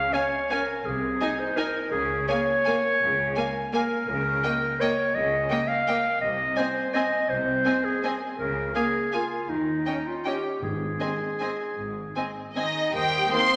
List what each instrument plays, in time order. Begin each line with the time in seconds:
Already playing: clarinet F5
0.13 viola section C#4, clarinet C#5, violin section F5 G#5
0.50 viola section C#4, clarinet A#4, violin section F5 G#5
0.85 double bass section C2, cello section C3, clarinet G#4
1.21 viola section D#4, violin section D#5 G#5
1.39 clarinet C5
1.57 viola section D#4, clarinet A#4, violin section D#5 G#5
1.91 double bass section C#2, cello section C#3, clarinet G#4
2.29 viola section A#3, clarinet C#5, violin section F5 G#5
2.66 viola section A#3, violin section F5 G#5
3.01 double bass section C#2, cello section C#3
3.36 viola section A#3, violin section F5 G#5
3.73 viola section A#3, clarinet A#4, violin section F5 G#5
4.08 double bass section C#2, cello section C#3, clarinet A#4
4.44 viola section A#3, violin section D#5 G5
4.80 viola section A#3, clarinet C#5, violin section D#5 G5
5.15 double bass section C#2, cello section C#3, clarinet D#5
5.51 viola section A#3, violin section D#5 G5
5.68 clarinet F5
5.87 viola section A#3, violin section D#5 G5
6.21 double bass section C2, cello section C3, clarinet D#5
6.57 viola section C4, clarinet C5, violin section D#5 G#5
6.94 viola section C4, clarinet D#5, violin section D#5 G#5
7.29 double bass section C2, cello section C3, clarinet C5
7.65 viola section C4, violin section D#5 G#5
7.85 clarinet G#4
8.03 viola section C4, violin section D#5 G#5
8.39 double bass section C#2, cello section C#3, clarinet A#4
8.75 viola section A#3, clarinet G#4, violin section F5 G#5
9.13 viola section A#3, clarinet F4, violin section F5 G#5
9.49 double bass section D#2, cello section D#3, clarinet D#4
9.86 viola section C#4, violin section D#5 G5
10.07 clarinet F4
10.25 viola section C#4, clarinet G4, violin section D#5 G5
10.62 double bass section G#1, cello section G#2, timpani G#2, clarinet G#4
11.00 viola section C4, violin section D#5 G#5
11.40 viola section C4, violin section D#5 G#5
11.77 double bass section G#1, cello section G#2
12.16 viola section C4, violin section D#5 G#5
12.56 cello section D#3, viola section C4, violin section D#4 D#5 G#5
12.94 double bass section D#2, cello section G3, bassoon A#3, violin section G4 G5, clarinet A#4, oboe C5, flute section D#6
13.32 french horn section D#3 A#3, viola section D#3 A#3, cello section C4, violin section C5 C6